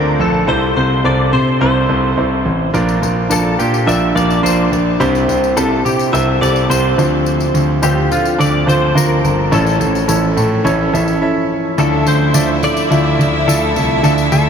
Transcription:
Already playing: D2 D3 A3 C4 D4 F4 A4 A#4 C5 D5
0.20 A#1 A4
0.47 C2 C3 C4 E4 A4 C5
0.77 C2 C5
1.04 C2 C4 E4 A4 C5 D5
1.33 C3 C5
1.60 C2 C4 E4 A4 C5
1.89 C2 C4 E4 A4 C5
2.17 C2 C4 E4 A4 C5
2.45 A1
2.74 A#1 A#2 A#3 D4 F4 A#4 D5, tambourine
2.89 tambourine
3.02 A#1, tambourine
3.29 A#1 D4 F4 A4 A#4 D5, tambourine
3.59 A#2 G4, tambourine
3.74 tambourine
3.86 A#1 D4 F4 A#4 D5 E5, tambourine
4.15 A#1 D4 F4 A#4 D5 F5, tambourine
4.30 tambourine
4.43 A#1 D4 F4 A#4 C5 D5, tambourine
4.72 A#1, tambourine
5.00 C2 C3 C4 E4 G4 C5, tambourine
5.15 tambourine
5.28 C2, tambourine
5.44 tambourine
5.56 C2 C4 E4 G4 A4 C5, tambourine
5.85 C3 G4, tambourine
5.99 tambourine
6.13 C2 C4 E4 G4 C5 E5, tambourine
6.41 C2 C4 E4 G4 A4 D5, tambourine
6.56 tambourine
6.69 C2 C4 E4 G4 C5, tambourine
6.98 D2 D3 F3 D4 F4 A4 C5, tambourine
7.26 tambourine
7.40 tambourine
7.54 D2, tambourine
7.82 D2 D4 F4 G4 A4 C5, tambourine
8.11 D3 F4, tambourine
8.25 tambourine
8.38 D2 D4 F4 A4 D5, tambourine
8.66 D2 D4 F4 A4 C5, tambourine
8.95 D2 D4 F4 A#4 C5 A5, tambourine
9.24 G1, tambourine
9.51 A1 A2 E3 C#4 E4 A4 C#5, tambourine
9.67 tambourine
9.80 A1, tambourine
9.95 tambourine
10.08 A1 C#4 E4 A4 C#5, tambourine
10.37 A2, tambourine
10.64 A1 C#4 E4 A4 C#5, tambourine
10.93 A1 C#4 E4 A4 E5, tambourine
11.08 tambourine
11.22 C#4 E4 A4 E5
11.78 D2 D3 F3 A3 E4 F4 A4 D5 E5, tambourine
12.06 D2 C5, tambourine
12.34 D2 F4 A4 D5 E5, tambourine
12.62 D3 D5, tambourine
12.77 tambourine
12.90 D2 E4 F4 A4 E5, tambourine
13.19 D2, tambourine
13.47 D2 E4 F4 A4 D5, tambourine
13.76 C2, tambourine
14.03 D2 D3 D4 F4 A4 D5 E5, tambourine
14.18 tambourine
14.32 D2 A4, tambourine

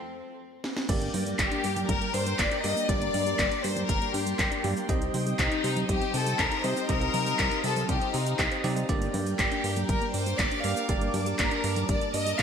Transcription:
Already playing: C4
0.64 snare
0.77 snare
0.89 G1 G3 A#3 D4 G4 A#4 D5 G5 D6, kick, closed hi-hat, crash, cabasa
1.01 A#3, closed hi-hat, cabasa
1.14 G2 D4, open hi-hat, high conga
1.27 G3, closed hi-hat, cabasa
1.39 G1 A#3 G4, kick, clap, closed hi-hat, cabasa
1.52 D4, closed hi-hat, cabasa
1.64 G2 G3, open hi-hat
1.76 A#3, closed hi-hat, high conga, cabasa
1.89 G1 G3 A#4, kick, closed hi-hat, high conga, cabasa
2.01 A#3, closed hi-hat, cabasa
2.14 G2 D4 C5, open hi-hat
2.27 G3, closed hi-hat, cabasa
2.39 G1 A#3 D5, kick, clap, closed hi-hat, cabasa
2.51 D4, closed hi-hat, cabasa
2.64 G2 G3 A#3 D4 G4 D5 D#5, open hi-hat
2.77 A#3, cabasa
2.89 G1 G3 A#3 D4 G4 D5 C6, kick, closed hi-hat, cabasa
3.02 A#3, closed hi-hat, cabasa
3.14 G2 D4, open hi-hat, high conga
3.27 G3, closed hi-hat, cabasa
3.39 G1 A#3, kick, clap, closed hi-hat, cabasa
3.52 D4, closed hi-hat, cabasa
3.64 G2 G3 C5, open hi-hat
3.77 A#3, closed hi-hat, high conga, cabasa
3.89 G1 G3 A#4, kick, closed hi-hat, cabasa
4.02 A#3, closed hi-hat, cabasa
4.14 G2 D4 G4, open hi-hat
4.26 G3, closed hi-hat, cabasa
4.39 G1 A#3, kick, clap, closed hi-hat, cabasa
4.51 D4, closed hi-hat, cabasa
4.64 G2 G3 A#3 D4 G4 D5, open hi-hat, high conga
4.76 A#3, cabasa
4.89 C2 G3 C4 D#4 G4 C5 D#5 D#6, kick, closed hi-hat, cabasa
5.02 C4, closed hi-hat, cabasa
5.14 C3 D#4, open hi-hat, high conga
5.27 G3, closed hi-hat, cabasa
5.39 C2 C4 D#4, kick, clap, closed hi-hat, cabasa
5.52 D#4, closed hi-hat, cabasa
5.64 C3 G3, open hi-hat
5.77 C4, closed hi-hat, high conga, cabasa
5.89 C2 G3 G4, kick, closed hi-hat, high conga, cabasa
6.01 C4, closed hi-hat, cabasa
6.14 C3 D#4 A4, open hi-hat
6.27 G3, closed hi-hat, cabasa
6.39 C2 C4 A#4, kick, clap, closed hi-hat, cabasa
6.51 D#4, closed hi-hat, cabasa
6.64 C3 G3 C4 D#4 G4 C5 D#5, open hi-hat
6.76 C4, cabasa
6.89 C2 G3 C4 D#4 G4 A#4 D#5 F5, kick, closed hi-hat, cabasa
7.01 C4, closed hi-hat, cabasa
7.14 C3 D#4, open hi-hat, high conga
7.26 G3, closed hi-hat, cabasa
7.39 C2 C4, kick, clap, closed hi-hat, cabasa
7.51 D#4, closed hi-hat, cabasa
7.64 C3 G3 A4, open hi-hat
7.76 C4, closed hi-hat, high conga, cabasa
7.89 C2 G3 G4, kick, closed hi-hat, cabasa
8.01 C4, closed hi-hat, cabasa
8.14 C3 D#4 G4, open hi-hat
8.26 G4, closed hi-hat, cabasa
8.39 C2 C4 D#4 G4 D#5, kick, clap, closed hi-hat, cabasa
8.52 C5, closed hi-hat, cabasa
8.64 C3 C4 D#4 G4 D5, open hi-hat, high conga
8.77 G3, closed hi-hat, cabasa
8.89 G1 G3 A#3 D4 G4 A#4 D5 G5 D6, kick, closed hi-hat, cabasa
9.02 A#3, closed hi-hat, cabasa
9.14 G2 D4, open hi-hat, high conga
9.27 G3, closed hi-hat, cabasa
9.39 G1 A#3 G4, kick, clap, closed hi-hat, cabasa
9.52 D4, closed hi-hat, cabasa
9.64 G2 G3, open hi-hat
9.77 A#3, closed hi-hat, high conga, cabasa
9.89 G1 G3 A#4, kick, closed hi-hat, high conga, cabasa
10.02 A#3, closed hi-hat, cabasa
10.14 G2 D4 C5, open hi-hat
10.26 G3, closed hi-hat, cabasa
10.39 G1 A#3 D5, kick, clap, closed hi-hat, cabasa
10.51 D4, closed hi-hat, cabasa
10.64 G2 G3 A#3 D4 G4 D5 F5, open hi-hat
10.76 A#3, cabasa
10.89 G1 G3 A#3 D4 G4 D5 A5, kick, closed hi-hat, cabasa
11.01 A#3, closed hi-hat, cabasa
11.14 G2 D4, open hi-hat, high conga
11.26 G3, closed hi-hat, cabasa
11.39 G1 A#3 A#4, kick, clap, closed hi-hat, cabasa
11.51 D4, closed hi-hat, cabasa
11.64 G2 G3, open hi-hat
11.76 A#3, closed hi-hat, high conga, cabasa
11.89 G1 G3 D5, kick, closed hi-hat, cabasa
12.01 A#3, closed hi-hat, cabasa
12.14 G2 D4 D#5, open hi-hat
12.26 G3, closed hi-hat, cabasa
12.39 G1 A#3 F5, kick, clap, closed hi-hat, cabasa

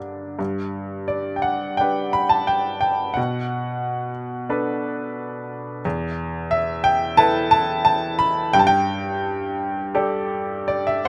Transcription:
Already playing: G2 D3 A#3 D4
0.39 G2
1.08 D5
1.36 G5
1.42 F#5
1.77 D4 G4 B4 G5
2.13 B5
2.29 A5
2.47 G5
2.81 G5
3.14 B2 F#5
4.49 D4 A4 B4
5.85 E2
6.51 E5
6.84 G5
7.17 E4 A4 B4 A5
7.51 A5
7.85 A5
8.19 B5
8.53 G2 G5
8.59 A5
8.67 G5
9.95 G4 A4 D5
10.68 D5
10.87 E5

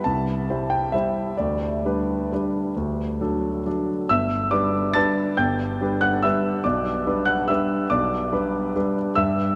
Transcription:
0.04 C2 A5
0.50 G3 E4 C5
0.70 G5
0.92 G3 E4 C5 E5
1.37 D2 D5
1.85 G3 D4 B4
2.32 G3 D4 B4
2.76 D2
3.21 F#3 D4 A4
3.66 F#3 D4 A4
4.09 G1 E5 E6
4.51 G3 D4 B4 D5 D6
4.93 G3 D4 B4 A5 A6
5.37 G1 G5 G6
5.81 G3 D4 B4
6.01 F#5 F#6
6.23 G3 D4 B4 E5 E6
6.64 B1 D5 D6
7.06 G3 D4 B4
7.25 F#5 F#6
7.48 G3 D4 B4 E5 E6
7.90 B1 D5 D6
8.32 G3 D4 B4
8.76 G3 D4 B4
9.15 G2 E5 E6

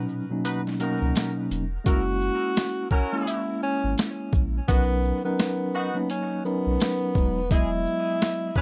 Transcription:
Already playing: A#2 B2 F#3 C#4 D#4
0.09 shaker
0.30 B2 F#3 A#3 C#4 D#4
0.44 D#4 F#4 B4, closed hi-hat
0.67 snare
0.79 B2 F#3 A#3 C#4 D#4 F#4 A#4, closed hi-hat, shaker
1.02 C#2
1.15 snare, closed hi-hat, tambourine
1.51 E1, closed hi-hat, shaker
1.84 F#1 G#3 A#3 C#4 E4 F#4 A#4, kick, closed hi-hat
2.21 shaker
2.57 snare, closed hi-hat, tambourine
2.91 C#4 E4 F#4 A#4, kick, shaker
3.12 G#3 A#3 C#4 E4
3.27 E4, closed hi-hat
3.62 C#4, shaker
3.84 G#1
3.98 snare, closed hi-hat, tambourine
4.33 A#1, kick, shaker
4.68 B1 F#3 B3 C#4 D#4 F#4 A#4, kick, closed hi-hat
5.03 shaker
5.24 F#3 B3 C#4 D#4 A#4
5.39 snare, closed hi-hat, tambourine
5.73 B3 D#4 F#4, shaker
5.94 F#3 A#3 C#4 D#4
6.10 C#4, closed hi-hat
6.44 F#3 B3 C#4 D#4 A#4, shaker
6.66 B1
6.80 snare, closed hi-hat, tambourine
7.14 E1 F#3 G#3 B3 D#4, kick, shaker
7.49 F#3 G#3 B3 E4 G#4 D#5, kick, closed hi-hat
7.86 shaker
8.21 snare, closed hi-hat, tambourine
8.56 C#4 E4 G#4 B4, kick, shaker

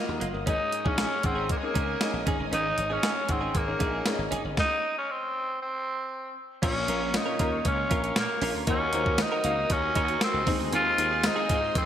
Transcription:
Already playing: D#3 A#3 F4 F#4 A#4 C5 D#5 F5 D#6
0.08 D#2, muted clean electric guitar stroke
0.20 F#1 F#3 A#3 F4, closed hi-hat
0.34 G1, muted clean electric guitar stroke
0.46 G#1 G#2 C#4 D#4 G#4 C#5 D#5 G#5, kick, closed hi-hat
0.59 muted clean electric guitar stroke
0.72 muted clean electric guitar stroke, closed hi-hat
0.84 A#1 C#4 D#4 G#4 D#5, kick
0.97 C#4 D#4 G#4, snare, closed hi-hat
1.10 muted clean electric guitar stroke
1.22 G#1 C4 C#4 D#4 G#4 F#5, muted clean electric guitar stroke, kick, closed hi-hat
1.35 C#4 D#4 G#4
1.49 A#3, muted clean electric guitar stroke, kick, closed hi-hat
1.58 G#3, muted clean electric guitar stroke
1.62 A#3 C#4 D#4 G#4 A#4
1.74 C#2 C#4 D#4 G#4, kick, closed hi-hat
1.87 C#4 D#4 G#4
2.00 C#4 D#4 G#4 D#5, muted clean electric guitar stroke, snare, closed hi-hat
2.13 A#1, muted clean electric guitar stroke
2.26 G#1 G#2 C#4 D#4 G#4 C#5, kick, closed hi-hat
2.33 D#5
2.39 G1, muted clean electric guitar stroke
2.51 G#1 C#4 D#4 G#4, closed hi-hat, cowbell
2.77 G#1, muted clean electric guitar stroke, closed hi-hat
2.90 C#4 D#4 G#4 D#5
3.02 C#4 D#4 G#4, snare, closed hi-hat, cowbell
3.16 muted clean electric guitar stroke
3.28 G#1 C4 C#4 D#4 G#4 F#5, muted clean electric guitar stroke, kick, closed hi-hat
3.41 C#4 D#4 G#4
3.54 G#1 A#3, muted clean electric guitar stroke, kick, closed hi-hat, cowbell
3.67 C#4 D#4 G#4 A#4, muted clean electric guitar stroke
3.79 A#1 C#4 D#4 G#4, kick, closed hi-hat
3.92 C#4 D#4 G#4
4.05 C#4 D#4 G#4 D5, muted clean electric guitar stroke, snare, closed hi-hat, cowbell
4.13 D#5
4.17 G#1, muted clean electric guitar stroke
4.31 F#1 C#4 D#4 G#4, closed hi-hat
4.44 G1, muted clean electric guitar stroke
4.57 D#4, kick, snare
4.98 C#4
5.10 C4
5.62 C4
6.62 A#1 A#2 A#3 C#4 F4 A#4 C#5 F5 C#6, kick, closed hi-hat, crash, cowbell
6.75 muted clean electric guitar stroke
6.88 A#1 C#4 F4 A#4, closed hi-hat
7.00 C#4 F4 A#4
7.13 A#3 C#4 D#4 F4 C#5, muted clean electric guitar stroke, snare, closed hi-hat, cowbell
7.26 C#4 F4 A#4
7.39 D#2 A#3 C#4 F4 A#4, kick, closed hi-hat
7.52 muted clean electric guitar stroke
7.65 C#2 C#4, muted clean electric guitar stroke, kick, closed hi-hat, cowbell
7.77 muted clean electric guitar stroke
7.90 A#1 C#4 F4 A#4, kick, closed hi-hat
8.03 C#4 F4 A#4, closed hi-hat
8.16 A#2 A#3, snare, closed hi-hat, cowbell
8.29 muted clean electric guitar stroke
8.42 A#1 C#4 F4 A#4, open hi-hat
8.54 D2 C#4 F4 A#4
8.67 D#2 D#3 A#3 C#4 D#4 F#4 A#4 D#5 D#6, kick, closed hi-hat, cowbell
8.80 muted clean electric guitar stroke
8.92 D#2 A#3 D#4 F#4 A#4 C5, closed hi-hat
9.05 D#4 F#4 A#4, kick
9.18 D#4, muted clean electric guitar stroke, snare, closed hi-hat, cowbell
9.32 D#4 F#4 A#4
9.44 C#2 A#3 D#4 F#4 A#4 F5, closed hi-hat
9.57 muted clean electric guitar stroke
9.69 D#2 C#4, muted clean electric guitar stroke, kick, closed hi-hat, cowbell
9.82 muted clean electric guitar stroke
9.95 D#2 D#4 F#4 A#4, kick, closed hi-hat
10.08 D#4 F#4 A#4, closed hi-hat
10.21 C4, muted clean electric guitar stroke, snare, closed hi-hat, cowbell
10.34 C#2, muted clean electric guitar stroke
10.46 D#2 D#3 G#3 C4 D#4 G#4 C5 C6, kick, open hi-hat
10.59 D2 C4 D#4 G#4
10.72 D#2 C4 D#4 F4 G#4, closed hi-hat, cowbell
10.86 muted clean electric guitar stroke
10.98 D#2 C4 D#4 G#4, closed hi-hat
11.11 C4 D#4 G#4
11.23 G#3 C4 D#4 F4, muted clean electric guitar stroke, snare, closed hi-hat, tambourine, cowbell
11.36 C4 D#4 G#4
11.49 G#2 G#3 C4 D#4 F4 G#4, kick, closed hi-hat
11.62 muted clean electric guitar stroke
11.75 F2 C4, muted clean electric guitar stroke, kick, closed hi-hat, cowbell

